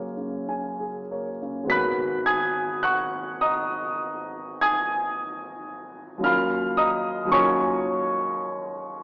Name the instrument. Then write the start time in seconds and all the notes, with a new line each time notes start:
grand piano
Already playing: C#3 A#3 G#4 A#4 C#5 G#5
0.17 C#3
0.48 C#3 G#5
0.80 G#4
1.11 A#3 A#4 C#5
1.42 C#3
1.64 G#1 G#3 B3
1.68 F#4 A#4 B5 F#6 B6
2.26 G#5 D#6 G#6
2.83 F#5 C#6 F#6
3.41 D#5 A#5 D#6
4.61 G#5 D#6 G#6
6.18 D#2 F#3 C#4
6.22 F4 A#4 F5 B5 F6
6.77 D#5 A#5 D#6
7.25 D#2 F#3 C#4
7.29 F4 A#4 C#5 G#5 C#6